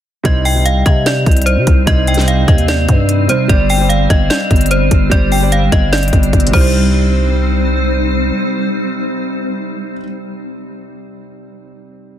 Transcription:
0.23 C2 C3 G3 C4 D#4 C5 D#5, kick, closed hi-hat
0.45 G5, open hi-hat
0.54 C3 G3 D#4 C5
0.66 F5, closed hi-hat
0.86 C3 D#5, kick, closed hi-hat
1.06 D5, snare, closed hi-hat
1.26 C2, kick, closed hi-hat
1.31 closed hi-hat
1.37 closed hi-hat
1.42 closed hi-hat
1.46 C5, closed hi-hat
1.57 C3
1.67 C2, kick, closed hi-hat
1.86 C2 C3 G3 D#4 C5 D#5, kick, closed hi-hat
2.07 G5, closed hi-hat
2.14 C3 G3, snare, closed hi-hat
2.18 D#4 C5, closed hi-hat
2.28 F5, closed hi-hat
2.48 D#2 D#5, kick, closed hi-hat
2.58 closed hi-hat
2.68 D5, snare, closed hi-hat
2.89 G2, kick, closed hi-hat
3.09 closed hi-hat
3.27 C3 G3 D#4 C5, closed hi-hat
3.48 G1 G3 D4 G4 C5 D5, kick, closed hi-hat
3.70 G5, open hi-hat
3.78 G3 G4 C5 D5
3.89 F5, closed hi-hat
4.10 G1 D#5, kick, closed hi-hat
4.30 D5, snare, closed hi-hat
4.51 G1, kick, closed hi-hat
4.56 closed hi-hat
4.61 closed hi-hat
4.66 closed hi-hat
4.71 C5, closed hi-hat
4.91 G1, kick, closed hi-hat
5.10 G1 G3 G4 C5 D5, kick, closed hi-hat
5.32 G5, open hi-hat
5.40 G3 G4 C5 D5
5.52 F5, closed hi-hat
5.72 G1 D#5, kick, closed hi-hat
5.93 D5, snare, closed hi-hat
5.98 closed hi-hat
6.03 closed hi-hat
6.08 closed hi-hat
6.13 G1, kick, closed hi-hat
6.23 closed hi-hat
6.33 G1, kick, closed hi-hat
6.40 closed hi-hat
6.47 C3, closed hi-hat
6.51 C2 G3 C4 D#4 C5, kick, crash
6.56 D#4
6.60 C5

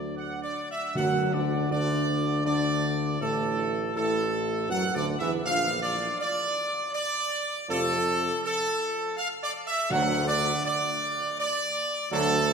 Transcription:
Already playing: D2 D3 F#3 D4 D5
0.16 F#5
0.42 D5
0.70 E5
0.95 F#2 D3 F#3 F#4 F#5
1.33 D2 D3 D4 D5
1.70 D2 D3 D4 D5
2.45 D2 D3 D4 D5
3.20 A1 A2 A3 A4
3.95 A1 A2 A3 A4
4.70 F#2 F#3 F#4 F#5
4.95 D2 D3 D4 D5
5.19 E2 E3 E4 E5
5.45 A#1 D3 F3 A#3 F4 F5
5.82 D5
6.19 D5
6.93 D5
7.69 F2 C3 F3 A3 F4 A4
8.44 A4
9.17 F5
9.41 D5
9.67 E5
9.90 D2 D3 F#3 A3 D4 F#5
10.28 D5
10.65 D5
11.39 D5
12.11 D2 D3 F#3 A3 D4 A4

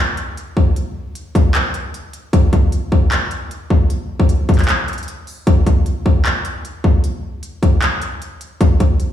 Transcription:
0.17 closed hi-hat
0.37 closed hi-hat
0.57 kick
0.76 closed hi-hat
1.15 closed hi-hat
1.35 kick, closed hi-hat
1.55 clap, closed hi-hat
1.74 closed hi-hat
1.94 closed hi-hat
2.13 closed hi-hat
2.33 kick, closed hi-hat
2.53 kick, closed hi-hat
2.72 closed hi-hat
2.92 kick
3.12 clap, closed hi-hat
3.31 closed hi-hat
3.51 closed hi-hat
3.70 kick
3.90 closed hi-hat
4.20 kick
4.29 closed hi-hat
4.49 kick, closed hi-hat
4.54 closed hi-hat
4.59 clap, closed hi-hat
4.64 closed hi-hat
4.68 clap, closed hi-hat
4.88 closed hi-hat
4.93 closed hi-hat
4.98 closed hi-hat
5.03 closed hi-hat
5.08 closed hi-hat
5.27 open hi-hat
5.47 kick, closed hi-hat
5.66 kick, closed hi-hat
5.86 closed hi-hat
6.06 kick
6.25 clap, closed hi-hat
6.45 closed hi-hat
6.65 closed hi-hat
6.84 kick
7.04 closed hi-hat
7.43 closed hi-hat
7.63 kick, closed hi-hat
7.82 clap, closed hi-hat
8.02 closed hi-hat
8.22 closed hi-hat
8.41 closed hi-hat
8.61 kick, closed hi-hat
8.80 kick, closed hi-hat
9.00 closed hi-hat

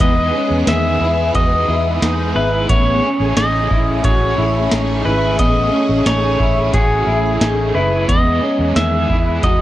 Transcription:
Already playing: G#3 B3 G#4
0.00 E2 E3 G#3 B3 D#4 G#4 D#5, kick, closed hi-hat
0.32 C#4 D#4 G#4
0.38 B3
0.50 E2
0.66 E2 D#3 G#3 B3 E5, snare, closed hi-hat, tambourine
0.72 G#4
1.00 E2 E4 G#4
1.05 B3
1.33 E2 E3 G#3 B3 D#4 F#4 D#5, kick, closed hi-hat
1.37 G#4
1.67 E2 D#4 E4 G#4
1.72 B3
2.00 E2 G#3 B3 D#4, snare, closed hi-hat, tambourine
2.06 G#4
2.34 G#1 D#4 E4 G#4 B4
2.40 B3
2.68 A1 A3 B3 C#4 E4 G#4 C#5, kick, closed hi-hat
3.01 C#4 E4 G#4
3.07 C#4
3.20 A1
3.35 A1 A3 C#4 D#4 E4 D#5, snare, closed hi-hat, tambourine
3.40 G#4
3.69 A1 E4 G#4, kick
3.74 C#4
4.03 A1 A3 C#4 E4 F#4 G#4 C#5, kick, closed hi-hat
4.36 A1 E4 G#4
4.41 C#4
4.69 A1 A3 C#4 D#4 E4, snare, closed hi-hat, tambourine
4.75 G#4
5.03 G#1 E4 G#4 B4
5.09 C#4
5.38 A1 A3 B3 C#4 E4 G#4 D#5, kick, closed hi-hat
5.71 C#4 E4 G#4
5.76 C#4
5.89 A1
6.05 A1 A3 C#4 D#4 E4 C#5, snare, closed hi-hat, tambourine
6.11 G#4
6.39 A1 E4 G#4, kick
6.44 C#4
6.72 A1 A3 C#4 E4 F#4 G#4, kick, closed hi-hat
7.06 A1 E4 G#4
7.12 C#4
7.39 A1 A3 C#4 D#4, snare, closed hi-hat, tambourine
7.44 E4 G#4
7.73 F#1 E4 G#4 B4
7.79 C#4
8.07 E2 E3 G#3 B3 D#4 G#4 D#5, kick, closed hi-hat
8.40 C#4 D#4 G#4
8.46 B3
8.59 E2
8.74 E2 D#3 E3 B3 E5, snare, closed hi-hat, tambourine
8.80 G#4
9.08 E2 E4 G#4, kick
9.13 B3
9.43 E2 E3 B3 D#4 F#4 D#5, kick, closed hi-hat
9.47 G#4

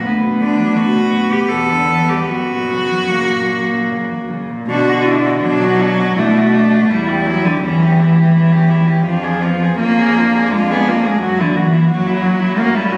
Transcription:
0.04 D2 F#2 B3
0.22 B2
0.41 D3 D4
0.59 F#3
0.75 D3 F#4
0.94 B2
1.12 F#2
1.31 B2 G4
1.48 E2 B2 A4
1.70 D3
1.90 E3
2.09 G3 G4
2.28 F#2 F#4
2.51 A#2
2.72 C#3
2.91 F#3
3.09 C#3 A#3
3.30 A#2
3.50 F#2
3.71 A#2
3.89 C#3
4.10 F#3
4.30 C#3
4.51 A#2
4.68 B2 D3 D4 F#4
4.89 F#4
5.05 D4 E4
5.26 F#4
5.42 B2 F#3 D4
5.63 F#4
5.81 D4 F#4
6.00 F#4
6.15 B2 A3 D4 E4
6.37 F#4
6.55 D4
6.73 F#4
6.88 E2 G3 E4
7.09 G4
7.26 F#3 E4
7.45 D3 G4
7.60 E2 E3 C#4
7.64 E4
7.82 G4
7.99 B3 E4
8.16 G4
8.31 E2 C#4 E4
8.52 G4
8.69 E4
8.87 G4
9.03 F2 F3 D4 F4
9.23 G#4
9.42 B3 F4
9.62 G#4
9.80 F2 A#3 C#4 F4
9.99 G#4
10.18 D4 F4
10.35 G#4
10.52 F2 G#3 F4
10.71 B3 G#4
10.88 A#3 F4
11.04 G#3 G#4
11.22 F#2 F#3 A#3 F#4
11.38 D3 E4
11.56 E3 F#4
11.73 E4
11.88 F#2 F#3 F#4
12.06 E4
12.22 F#4
12.40 E4
12.57 F#2 A#3 C#4 F#4
12.74 G3 E4
12.92 F#3 F#4

